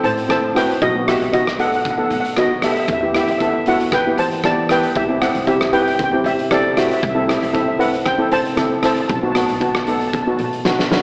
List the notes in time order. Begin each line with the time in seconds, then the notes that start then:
Already playing: C4 E4 A4
0.03 A2 C5 A5, closed hi-hat
0.18 closed hi-hat
0.28 C4 E4 A4 C5 A5, kick, cross-stick, closed hi-hat
0.55 C4 E4 F#4 B4 G5, cross-stick, closed hi-hat
0.70 closed hi-hat
0.82 B1 F#4 D#5, kick, closed hi-hat
0.95 B3 D#4 F#4
1.07 B3 D#4 F#4 G4 E5, cross-stick, closed hi-hat
1.22 B1, closed hi-hat
1.33 B3 D#4 F#4 D#5, kick, closed hi-hat
1.47 cross-stick
1.59 B3 D#4 A4 F#5, closed hi-hat
1.67 F#5
1.73 F#5, closed hi-hat
1.83 F#5, kick, closed hi-hat
1.91 F#5
1.97 B3 D#4 A4 F#5
2.06 F#5
2.10 B2 F#5, closed hi-hat
2.20 F#5
2.25 closed hi-hat
2.37 B3 D#4 F#4 D#5, kick, cross-stick, closed hi-hat
2.62 B3 D#4 G4 A4 E5, cross-stick, closed hi-hat
2.72 E5, closed hi-hat
2.80 E5
2.86 E2 E5, kick, closed hi-hat
2.93 E5
3.01 B3 E4 G4 E5
3.14 B3 E4 G4 E5, cross-stick, closed hi-hat
3.23 E5
3.28 E2 E5, closed hi-hat
3.39 B3 E4 A4 E5, kick, closed hi-hat
3.47 E5
3.54 E5
3.66 B3 E4 F#4 A4 F#5, closed hi-hat
3.80 closed hi-hat
3.92 B4 G5, kick, cross-stick, closed hi-hat
4.07 B3 E4 G4
4.17 E3 C5 A5, closed hi-hat
4.31 closed hi-hat
4.44 B3 E4 G4 D5 A5, kick, cross-stick, closed hi-hat
4.69 B3 E4 G4 B4 G5, cross-stick, closed hi-hat
4.83 closed hi-hat
4.95 C2 G4 E5, kick, closed hi-hat
5.09 C4 E4 G4
5.21 C4 E4 G4 A4 F#5, cross-stick, closed hi-hat
5.35 C2, closed hi-hat
5.47 C4 E4 G4 E5, kick, closed hi-hat
5.61 cross-stick
5.73 C4 E4 G4 B4 G5, closed hi-hat
5.82 G5
5.87 G5, closed hi-hat
5.95 G5
5.99 kick, closed hi-hat
6.04 G5
6.12 C4 E4 G4 G5
6.24 C3 G4 E5, closed hi-hat
6.39 closed hi-hat
6.51 C4 E4 G4 A4 D5, kick, cross-stick, closed hi-hat
6.77 C4 E4 F#4 G4 E5, cross-stick, closed hi-hat
6.87 E5
6.91 E5, closed hi-hat
7.02 C2 E5, kick, closed hi-hat
7.09 E5
7.14 C4 E4 A4 E5
7.24 C4 E4 G4 E5
7.29 E5, cross-stick, closed hi-hat
7.38 E5
7.43 C2 E5, closed hi-hat
7.53 C4 E4 A4 E5, kick, closed hi-hat
7.61 E5
7.68 E5
7.79 C4 E4 A4 B4 F#5, closed hi-hat
7.94 closed hi-hat
8.06 C5 G5, kick, cross-stick, closed hi-hat
8.18 C4 E4 A4
8.31 C3 C5 A5, closed hi-hat
8.45 closed hi-hat
8.56 C4 E4 A4, kick, cross-stick, closed hi-hat
8.82 C4 E4 A4 C5 A5, cross-stick, closed hi-hat
8.96 closed hi-hat
9.01 A5
9.08 B1 A5, kick, closed hi-hat
9.14 A5
9.23 B3 D#4 F#4 A5
9.31 B3 A5, cross-stick, closed hi-hat
9.35 D#4 F#4 A5
9.46 B1 A5, closed hi-hat
9.55 A5
9.60 B3 D#4 F#4 A5, kick, closed hi-hat
9.69 A5
9.75 A5, cross-stick
9.84 B3 D#4 A4 A5, closed hi-hat
9.92 A5
10.00 A5, closed hi-hat
10.08 A5
10.13 A5, kick, closed hi-hat
10.23 B3 A5
10.27 D#4 F#4 A5
10.37 B2 A5, closed hi-hat
10.44 A5
10.53 closed hi-hat
10.65 B3 D#4 F#4, kick, snare
10.79 snare
10.91 B3 D#4 F#4, snare